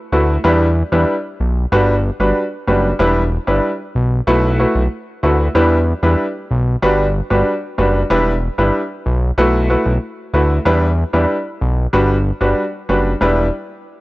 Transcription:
0.12 0.38 D2 medium
0.12 0.33 A3 medium
0.12 0.33 E4 medium
0.12 0.34 F#4 medium
0.12 0.34 B4 medium
0.44 0.83 E2 loud
0.44 0.65 G3 loud
0.44 0.65 D4 medium
0.44 0.65 E4 medium
0.44 0.65 B4 loud
0.92 1.05 E2 loud
0.92 1.13 G3 medium
0.92 1.13 D4 medium
0.92 1.13 E4 medium
0.92 1.13 B4 medium
1.40 1.66 B1 medium
1.72 2.11 G1 loud
1.72 1.93 G3 loud
1.72 1.93 D4 medium
1.72 1.93 F#4 medium
1.72 1.93 B4 loud
2.20 2.33 G1 medium
2.20 2.41 G3 medium
2.20 2.41 D4 medium
2.20 2.41 F#4 medium
2.20 2.41 B4 medium
2.67 2.93 F#1 medium
2.67 2.89 G3 medium
2.67 2.89 D4 medium
2.67 2.89 F#4 medium
2.67 2.89 B4 medium
2.99 3.38 E1 loud
2.99 3.20 G3 medium
2.99 3.21 D4 medium
2.99 3.21 E4 medium
2.99 3.21 B4 loud
3.47 3.60 G1 loud
3.47 3.68 G3 medium
3.47 3.68 D4 medium
3.47 3.68 E4 medium
3.47 3.69 B4 medium
3.95 4.21 B1 medium
4.27 4.66 B1 loud
4.27 4.57 A3 medium
4.27 4.57 E4 medium
4.27 4.57 F#4 medium
4.27 4.57 B4 loud
4.59 4.80 A3 medium
4.59 4.80 E4 medium
4.59 4.80 F#4 medium
4.59 4.81 B4 medium
4.75 4.88 B1 medium
5.23 5.49 D2 loud
5.23 5.44 A3 medium
5.23 5.44 E4 medium
5.23 5.44 F#4 medium
5.23 5.44 B4 medium
5.55 5.94 E2 loud
5.55 5.76 G3 loud
5.55 5.76 D4 medium
5.55 5.76 E4 medium
5.55 5.76 B4 loud
6.03 6.16 E2 loud
6.03 6.24 G3 medium
6.03 6.24 D4 medium
6.03 6.24 E4 medium
6.03 6.24 B4 medium
6.51 6.77 B1 medium
6.82 7.21 G1 loud
6.82 7.03 G3 loud
6.82 7.04 D4 medium
6.82 7.04 F#4 medium
6.82 7.04 B4 loud
7.30 7.43 G1 medium
7.30 7.51 G3 medium
7.30 7.51 D4 medium
7.30 7.52 F#4 medium
7.30 7.52 B4 medium
7.78 8.04 F#1 medium
7.78 7.99 G3 medium
7.78 7.99 D4 medium
7.78 7.99 F#4 medium
7.78 7.99 B4 medium
8.10 8.49 E1 loud
8.10 8.31 G3 loud
8.10 8.31 D4 medium
8.10 8.31 E4 medium
8.10 8.31 B4 loud
8.58 8.71 G1 medium
8.58 8.79 G3 medium
8.58 8.79 D4 medium
8.58 8.79 E4 medium
8.58 8.79 B4 medium
9.06 9.32 B1 medium
9.38 9.77 B1 loud
9.38 9.67 A3 medium
9.38 9.67 E4 medium
9.38 9.67 F#4 medium
9.38 9.68 B4 loud
9.70 9.91 A3 medium
9.70 9.91 E4 medium
9.70 9.91 F#4 medium
9.70 9.91 B4 medium
9.86 9.99 B1 medium
10.34 10.59 D2 loud
10.34 10.55 A3 medium
10.34 10.55 E4 medium
10.34 10.55 F#4 medium
10.34 10.55 B4 medium
10.65 11.04 E2 loud
10.65 10.86 G3 medium
10.65 10.87 D4 medium
10.65 10.87 E4 medium
10.65 10.87 B4 loud
11.13 11.26 E2 loud
11.13 11.34 G3 medium
11.13 11.34 D4 medium
11.13 11.34 E4 medium
11.13 11.35 B4 medium
11.61 11.87 B1 medium
11.93 12.32 G1 loud
11.93 12.14 G3 medium
11.93 12.14 D4 medium
11.93 12.14 F#4 medium
11.93 12.14 B4 loud
12.41 12.54 G1 medium
12.41 12.62 G3 medium
12.41 12.62 D4 medium
12.41 12.62 F#4 medium
12.41 12.62 B4 medium
12.89 13.15 F#1 medium
12.89 13.10 G3 medium
12.89 13.10 D4 medium
12.89 13.10 F#4 medium
12.89 13.10 B4 medium
13.21 13.51 E1 loud
13.21 13.45 G3 medium
13.21 13.45 D4 medium
13.21 13.45 E4 medium
13.21 13.45 B4 loud

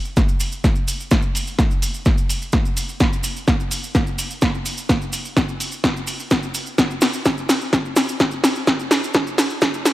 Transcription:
0.05 maracas soft
0.17 kick loud
0.17 snare soft
0.17 maracas medium
0.28 maracas soft
0.40 open hi-hat medium
0.40 maracas medium
0.52 maracas soft
0.64 kick loud
0.64 snare soft
0.64 maracas medium
0.75 maracas soft
0.88 open hi-hat medium
0.88 maracas medium
1.00 maracas soft
1.11 kick loud
1.11 snare medium
1.11 maracas medium
1.22 maracas soft
1.35 open hi-hat loud
1.35 maracas medium
1.47 maracas soft
1.59 kick loud
1.59 snare medium
1.59 maracas medium
1.71 maracas soft
1.82 open hi-hat loud
1.82 maracas medium
1.94 maracas soft
2.05 kick loud
2.05 snare soft
2.05 maracas soft
2.18 maracas soft
2.29 open hi-hat loud
2.29 maracas medium
2.42 maracas soft
2.52 kick loud
2.52 snare medium
2.52 maracas soft
2.65 maracas soft
2.77 open hi-hat loud
2.77 maracas medium
2.89 maracas soft
3.00 kick loud
3.00 snare medium
3.00 maracas soft
3.13 maracas soft
3.23 open hi-hat loud
3.23 maracas loud
3.36 maracas soft
3.48 kick loud
3.48 snare medium
3.48 maracas soft
3.60 maracas soft
3.71 open hi-hat loud
3.71 maracas medium
3.84 maracas soft
3.95 kick loud
3.95 snare medium
3.95 maracas medium
4.07 maracas soft
4.18 open hi-hat loud
4.18 maracas medium
4.31 maracas soft
4.42 kick loud
4.42 snare medium
4.42 maracas medium
4.55 maracas soft
4.65 open hi-hat loud
4.65 maracas medium
4.78 maracas soft
4.89 kick loud
4.89 snare medium
4.89 maracas medium
5.01 maracas soft
5.13 open hi-hat loud
5.13 maracas medium
5.25 maracas soft
5.37 kick loud
5.37 snare medium
5.37 maracas medium
5.49 maracas soft
5.60 open hi-hat loud
5.60 maracas medium
5.72 maracas soft
5.84 kick loud
5.84 snare medium
5.84 maracas soft
5.97 maracas soft
6.07 open hi-hat loud
6.07 maracas medium
6.20 maracas soft
6.31 kick loud
6.31 snare medium
6.31 maracas medium
6.43 maracas soft
6.54 open hi-hat loud
6.54 maracas medium
6.66 maracas soft
6.78 kick loud
6.78 snare medium
6.78 maracas medium
6.91 maracas soft
7.01 snare medium
7.01 open hi-hat loud
7.01 maracas medium
7.13 maracas soft
7.25 kick loud
7.25 snare medium
7.25 maracas medium
7.38 maracas soft
7.49 snare medium
7.49 open hi-hat loud
7.49 maracas medium
7.61 maracas soft
7.73 kick loud
7.73 snare medium
7.73 maracas soft
7.85 maracas soft
7.96 snare medium
7.96 open hi-hat loud
7.96 maracas medium
8.09 maracas soft
8.20 kick loud
8.20 snare medium
8.20 maracas medium
8.31 maracas soft
8.44 snare medium
8.44 open hi-hat loud
8.44 maracas medium
8.56 maracas soft
8.67 kick loud
8.67 snare medium
8.67 maracas medium
8.79 maracas soft
8.91 snare medium
8.91 open hi-hat loud
8.91 maracas medium
9.04 maracas soft
9.14 kick loud
9.14 snare medium
9.14 maracas medium
9.27 maracas soft
9.38 snare medium
9.38 open hi-hat loud
9.38 maracas medium
9.50 maracas soft
9.61 kick loud
9.61 snare medium
9.61 maracas soft
9.74 maracas soft
9.85 snare medium
9.85 open hi-hat loud
9.85 maracas medium

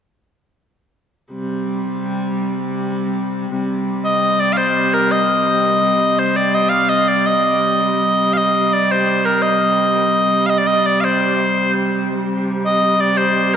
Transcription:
1.34 3.49 C3 medium
1.34 3.50 G3 medium
3.49 7.80 C3 medium
3.49 7.80 G3 medium
4.05 4.40 D#5 medium
4.40 4.53 D5 medium
4.53 4.57 F5 medium
4.57 4.94 C5 medium
4.94 5.11 A#4 medium
5.11 6.19 D#5 medium
6.19 6.36 C5 medium
6.36 6.54 D5 medium
6.54 6.69 D#5 medium
6.69 6.89 F5 medium
6.89 7.08 D#5 medium
7.08 7.26 D5 medium
7.26 8.33 D#5 medium
7.80 12.13 C3 medium
7.80 12.14 G3 medium
8.33 8.37 F5 medium
8.37 8.73 D#5 medium
8.73 8.92 D5 medium
8.92 9.25 C5 medium
9.25 9.42 A#4 medium
9.42 10.46 D#5 medium
10.46 10.58 D#5 medium
10.46 10.50 F5 medium
10.58 10.67 D5 medium
10.67 10.86 D#5 medium
10.86 11.01 D5 medium
11.01 11.73 C5 medium
11.01 11.04 F5 medium
12.13 13.57 C3 medium
12.13 13.57 G3 medium
12.66 13.00 D#5 medium
13.01 13.17 D5 medium
13.17 13.54 C5 medium

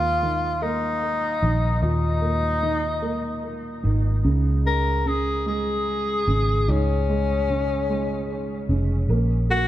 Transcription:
0.00 1.38 D#2 loud
0.00 0.21 D#3 medium
0.00 0.60 A#3 medium
0.00 0.64 F4 loud
0.23 1.41 D#3 medium
0.62 2.19 A#3 medium
0.62 1.82 D#4 medium
1.42 1.80 A#1 medium
1.42 2.61 D#3 medium
1.82 3.80 D#2 loud
1.82 4.21 A#2 medium
1.82 3.80 D#4 loud
2.22 3.01 A#3 medium
2.63 3.82 D#3 medium
3.02 4.21 A#3 medium
3.83 4.23 G#1 medium
3.83 4.23 D#3 medium
4.24 6.24 C#2 loud
4.24 5.04 C#3 medium
4.65 5.44 G#3 medium
4.65 5.09 A#4 loud
5.06 6.26 C#3 medium
5.06 5.47 G#4 loud
5.46 7.04 G#3 medium
5.46 6.72 G#4 loud
6.27 6.66 G#1 medium
6.27 7.48 C#3 medium
6.68 8.65 C#2 loud
6.68 9.05 G#2 medium
6.68 8.71 C#4 loud
7.09 7.88 G#3 medium
7.49 8.68 C#3 medium
7.89 9.06 G#3 medium
8.69 9.07 F1 medium
8.69 9.08 C#3 medium
9.09 9.68 A#1 loud
9.09 9.48 A#3 medium
9.50 9.68 A#3 medium
9.50 9.68 F#4 loud

